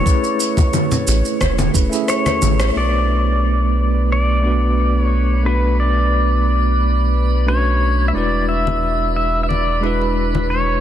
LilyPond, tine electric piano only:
\new Staff \with { instrumentName = "Tine electric piano" } { \time 4/4 \key b \dorian \tempo 4 = 89 <a cis' e' gis' b'>2~ <a cis' e' gis' b'>8 <a cis' e' gis' b'>16 <a cis' e' gis' e''>4~ <a cis' e' gis' e''>16 | <a b d' fis' b'>2~ <a b d' fis' b'>8 <a b d' fis' b'>4. | <a b d' fis' b'>2. <a cis' d' fis' b'>4 | <gis d' e' fis' b'>2~ <gis d' e' fis' b'>8 <gis d' e' fis' b'>4. | }